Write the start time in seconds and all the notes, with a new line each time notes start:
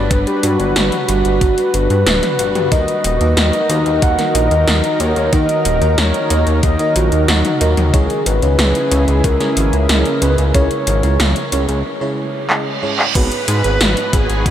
Already playing: G3 D4 F#4 B4 D5
0.11 G1 B4, kick, closed hi-hat
0.27 G4, closed hi-hat
0.43 G2 F#4, closed hi-hat
0.60 G1, closed hi-hat
0.76 G1, snare, closed hi-hat
0.92 closed hi-hat, mid tom
1.09 G1, closed hi-hat
1.25 G1, closed hi-hat
1.41 G1, kick, closed hi-hat
1.58 closed hi-hat
1.74 G1 B4, closed hi-hat
1.90 G2, closed hi-hat
2.06 D1, snare, closed hi-hat
2.23 snare, closed hi-hat, mid tom
2.39 G1, closed hi-hat
2.55 G2, closed hi-hat, mid tom
2.72 D#2 D#3 A#3 D#4 F#4 A#4 D#5, kick, closed hi-hat
2.88 closed hi-hat
3.04 D#1 D#5, closed hi-hat
3.21 D#2 D#3 A#3 D#4 F#4 A#4 D#5, closed hi-hat
3.37 D#2, snare, closed hi-hat
3.53 closed hi-hat
3.69 D#2 D#3 A#3 D#4 F#4 A#4 D#5, closed hi-hat
3.86 D#2, closed hi-hat
4.02 D#2 F#5, kick, closed hi-hat
4.19 D#3 A#3 D#4 F#4 A#4 D#5, snare, closed hi-hat
4.35 A#1 D#5, closed hi-hat
4.51 D#2, closed hi-hat
4.67 D#2 D#3 A#3 D#4 F#4 A#4 F#5, snare, closed hi-hat
4.84 closed hi-hat
5.00 D#2 D#3 A#3 D#4 F#4 A#4 C#5 D#5, closed hi-hat
5.16 D#2, closed hi-hat
5.33 D#2 D#3 A#3 D#4 F#4 A#4 D#5, kick, closed hi-hat
5.49 closed hi-hat
5.65 D#1 D#5, closed hi-hat
5.82 D#2 D#3 A#3 D#4 F#4 A#4 D#5, closed hi-hat
5.98 D#2 C#5, snare, closed hi-hat
6.14 closed hi-hat
6.30 D#2 D#3 A#3 D#4 F#4 A#4 D#5, closed hi-hat
6.47 D#2, closed hi-hat
6.63 D#2 D#5, kick, closed hi-hat
6.79 D#3 A#3 D#4 F#4 A#4 D#5, closed hi-hat
6.96 A#1 F#4, closed hi-hat
7.12 D#2, closed hi-hat
7.28 D#2 D#3 A#3 D#4 F#4 A#4 F#5, snare, closed hi-hat
7.45 closed hi-hat, mid tom
7.61 D#2 A#3 D#4 F#4 A#4 D#5, closed hi-hat
7.77 D#2, closed hi-hat, mid tom
7.94 C#2 C#3 G#3 C#4 E4 G#4 C#5, kick, closed hi-hat
8.10 closed hi-hat
8.26 G#1 B4, closed hi-hat
8.42 C#2 C#3 G#3 C#4 E4 G#4 C#5, closed hi-hat
8.59 C#2, snare, closed hi-hat
8.75 closed hi-hat
8.91 C#2 C#3 G#3 C#4 E4 G#4 C#5, closed hi-hat
9.08 C#2, closed hi-hat
9.24 C#2 A#4, kick, closed hi-hat
9.40 C#3 G#3 C#4 E4 G#4 C#5, snare, closed hi-hat
9.57 G#1, closed hi-hat
9.73 C#2, closed hi-hat
9.89 C#2 C#3 G#3 C#4 E4 G#4 A#4 D#5, snare, closed hi-hat
10.05 closed hi-hat
10.22 C#2 C#3 G#3 C#4 E4 G#4 B4 C#5, closed hi-hat
10.38 C#2, closed hi-hat
10.54 C#2 C#3 G#3 C#4 E4 G#4 A#4 C#5, kick, closed hi-hat
10.71 closed hi-hat
10.87 G#1, closed hi-hat
11.03 C#2 C#3 G#3 C#4 E4 G#4 C#5, closed hi-hat
11.20 C#2, snare, closed hi-hat
11.36 closed hi-hat
11.52 C#2 C#3 G#3 C#4 E4 G#4 C#5, closed hi-hat
11.69 C#2, closed hi-hat
11.85 reverse cymbal
12.01 C#3 G#3 C#4 E4 G#4 C#5
12.50 C#3 G#3 C#4 E4 G#4 D#5, clap
12.83 G#2 G#3 C#4 E4 G#4 C#5
12.99 clap
13.15 G#1 G#2 G#3 B3 D#4 F#4 G#4 B4, kick, closed hi-hat, crash
13.32 closed hi-hat
13.48 G#2, closed hi-hat
13.64 G#1 G#2 B3 D#4 F#4 G#4 B4, closed hi-hat
13.81 G#1, snare, closed hi-hat
13.97 closed hi-hat
14.13 G#1 G#2 B3 D#4 F#4 G#4 B4, kick, closed hi-hat
14.29 G#1, closed hi-hat
14.46 G#1 F#4, kick, closed hi-hat